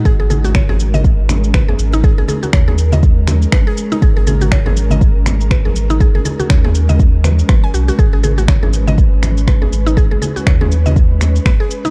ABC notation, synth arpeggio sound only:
X:1
M:4/4
L:1/16
Q:"Swing 16ths" 1/4=121
K:G#m
V:1 name="Synth arpeggio sound"
G G G F c G z d z4 B G z D | G G G F c G z d z4 B G z D | G G G F c G z d z4 B G z D | G G G F c G z d z2 B z B g F F |
G G G F c G z d z4 B G z D | G G G F c G z d z4 B G z D |]